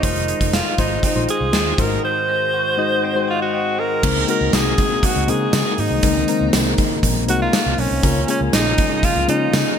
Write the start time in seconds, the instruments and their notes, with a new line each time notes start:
0.02 fingered electric bass F1, clean electric guitar D#3, synth keys G#3 D#4 F4 C5, alto saxophone D#4, kick, closed hi-hat
0.16 closed hi-hat
0.28 clean electric guitar G#3, closed hi-hat
0.41 fingered electric bass F1, kick, closed hi-hat
0.53 clean electric guitar F4, alto saxophone F4, snare, closed hi-hat
0.78 fingered electric bass G#1, synth keys G#3 D#4 F4 C5, clean electric guitar G#3, alto saxophone D#4, kick, closed hi-hat
1.03 clean electric guitar C4, alto saxophone D#4, kick, closed hi-hat
1.15 fingered electric bass A#1, synth keys G#3 D#4 F4 C5
1.29 clean electric guitar F4, alto saxophone G#4, closed hi-hat
1.41 fingered electric bass C2
1.53 fingered electric bass D#2, clean electric guitar C4, snare, closed hi-hat
1.78 fingered electric bass G#1, synth keys G#2 G#3 D#4 F#4 C5, clean electric guitar D#3, alto saxophone A#4, kick, closed hi-hat
2.04 clean electric guitar D#3, alto saxophone C5
2.28 clean electric guitar G#3
2.54 clean electric guitar F#4
2.77 synth keys G#3 D#4 F#4 D#5, clean electric guitar G#3
3.04 clean electric guitar C4
3.15 synth keys G#3 D#4 F#4 C5
3.28 alto saxophone F4, clean electric guitar F#4
3.42 alto saxophone F#4
3.53 clean electric guitar C4, synth keys D#5
3.79 clean electric guitar G#3, alto saxophone A#4
4.03 fingered electric bass C#2, synth keys C#3 G#3 A#3 C4 D#4 A#4, analog synth pad D#3 G#3 A#3 C4 D#4, kick, crash
4.27 synth keys G#3 A#3 C4 D#4 F#4, alto saxophone A#4, closed hi-hat
4.41 fingered electric bass C#2
4.53 fingered electric bass C2, alto saxophone G#4, snare, closed hi-hat, tambourine
4.78 kick, closed hi-hat
5.03 alto saxophone F#4, kick, closed hi-hat
5.16 fingered electric bass C#2
5.27 fingered electric bass C#3, synth keys G#3 A#3 C4 D#4 A#4, alto saxophone G#4, closed hi-hat
5.53 fingered electric bass C#3, snare, closed hi-hat, tambourine
5.78 fingered electric bass G#2, alto saxophone D#4, open hi-hat
5.91 fingered electric bass C2
6.03 fingered electric bass C#2, synth keys C#3 G#3 A#3 C4 D#4 A#4, kick, closed hi-hat
6.28 synth keys G#3 A#3 C4 D#4 A#4, closed hi-hat
6.41 fingered electric bass C#2
6.53 fingered electric bass C2, snare, closed hi-hat, tambourine
6.78 kick, closed hi-hat
7.03 fingered electric bass A#1, kick, closed hi-hat
7.28 fingered electric bass C2, synth keys G#3 A#3 C4 D#4 A#4, alto saxophone F#4, closed hi-hat
7.42 alto saxophone F4
7.53 snare, closed hi-hat, tambourine
7.66 fingered electric bass C2
7.78 fingered electric bass B1, alto saxophone C#4, open hi-hat
7.91 fingered electric bass C2
8.03 fingered electric bass C#2, synth keys C#3 G#3 A#3 C#4 F4 A#4, analog synth pad C#3 F3 F4, kick, closed hi-hat
8.28 synth keys G#3 A#3 C#4 F4 G#4, alto saxophone C#4, closed hi-hat
8.41 fingered electric bass C#2
8.53 fingered electric bass A#1, alto saxophone D#4, snare, closed hi-hat, tambourine
8.78 kick, closed hi-hat
9.03 alto saxophone F4, kick, closed hi-hat
9.16 fingered electric bass C#2
9.28 fingered electric bass C#3, synth keys G#3 A#3 C#4 F4 G#4, alto saxophone D#4, closed hi-hat
9.53 fingered electric bass C#3, snare, closed hi-hat, tambourine